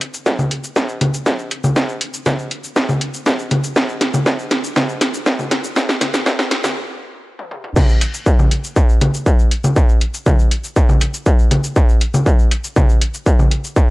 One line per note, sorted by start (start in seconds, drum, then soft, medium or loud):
0.01 closed hi-hat medium
0.14 shaker medium
0.26 kick loud
0.26 snare soft
0.26 shaker medium
0.39 low conga medium
0.39 shaker soft
0.51 closed hi-hat medium
0.64 shaker medium
0.76 kick loud
0.76 snare medium
0.76 shaker medium
0.89 shaker soft
1.01 closed hi-hat loud
1.01 low conga medium
1.14 shaker medium
1.26 kick loud
1.26 snare medium
1.26 shaker medium
1.39 shaker soft
1.51 closed hi-hat medium
1.64 low conga medium
1.64 shaker medium
1.76 kick loud
1.76 snare medium
1.76 shaker medium
1.89 shaker soft
2.01 closed hi-hat loud
2.14 shaker medium
2.26 kick loud
2.26 snare medium
2.26 low conga medium
2.26 shaker medium
2.39 shaker soft
2.51 closed hi-hat medium
2.64 shaker medium
2.76 kick loud
2.76 snare medium
2.76 shaker medium
2.89 low conga medium
2.89 shaker soft
3.01 closed hi-hat loud
3.14 shaker medium
3.26 kick loud
3.26 snare medium
3.26 shaker medium
3.39 shaker soft
3.51 closed hi-hat medium
3.51 low conga medium
3.64 shaker medium
3.76 kick loud
3.76 snare medium
3.76 shaker medium
3.89 shaker soft
4.01 snare medium
4.01 closed hi-hat loud
4.14 low conga medium
4.14 shaker medium
4.26 kick loud
4.26 snare medium
4.26 shaker medium
4.39 shaker soft
4.51 snare medium
4.51 closed hi-hat loud
4.64 shaker medium
4.76 kick loud
4.76 snare medium
4.76 low conga medium
4.76 shaker medium
4.89 shaker soft
5.01 snare medium
5.01 closed hi-hat loud
5.14 shaker medium
5.26 kick loud
5.26 snare medium
5.26 shaker medium
5.39 low conga medium
5.39 shaker soft
5.51 snare medium
5.51 closed hi-hat loud
5.64 shaker medium
5.76 kick loud
5.76 snare medium
5.76 shaker medium
5.89 snare medium
5.89 shaker soft
6.01 snare medium
6.01 closed hi-hat loud
6.01 low conga medium
6.14 snare medium
6.14 shaker medium
6.26 kick loud
6.26 snare loud
6.26 shaker medium
6.39 snare medium
6.39 shaker soft
6.51 snare loud
6.51 closed hi-hat loud
6.64 snare medium
6.64 low conga medium
6.64 shaker medium
7.39 high tom medium
7.51 mid tom medium
7.64 mid tom medium
7.76 kick loud
7.76 crash loud
7.76 low conga loud
7.76 shaker medium
7.89 shaker soft
8.01 closed hi-hat loud
8.14 shaker medium
8.26 kick loud
8.26 shaker medium
8.39 low conga medium
8.39 shaker soft
8.51 closed hi-hat loud
8.64 shaker medium
8.76 kick loud
8.76 shaker medium
8.89 shaker soft
9.01 closed hi-hat loud
9.01 low conga loud
9.14 shaker medium
9.26 kick loud
9.26 shaker medium
9.39 shaker soft
9.51 closed hi-hat medium
9.64 low conga medium
9.64 shaker medium
9.76 kick loud
9.76 shaker medium
9.89 shaker soft
10.01 closed hi-hat loud
10.14 shaker medium
10.26 kick loud
10.26 low conga medium
10.26 shaker medium
10.39 shaker soft
10.51 closed hi-hat loud
10.64 shaker medium
10.76 kick loud
10.76 shaker medium
10.89 low conga medium
10.89 shaker soft
11.01 closed hi-hat loud
11.14 shaker medium
11.26 kick loud
11.26 shaker medium
11.39 shaker soft
11.51 closed hi-hat loud
11.51 low conga medium
11.64 shaker medium
11.76 kick loud
11.76 shaker medium
11.89 shaker soft
12.01 closed hi-hat loud
12.14 low conga medium
12.14 shaker medium
12.26 kick loud
12.26 shaker medium
12.39 shaker soft
12.51 closed hi-hat loud
12.64 shaker medium
12.76 kick loud
12.76 low conga medium
12.76 shaker medium
12.89 shaker soft
13.01 closed hi-hat loud
13.14 shaker medium
13.26 kick loud
13.26 shaker medium
13.39 low conga medium
13.39 shaker soft
13.51 closed hi-hat loud
13.64 shaker medium
13.76 kick loud
13.76 shaker medium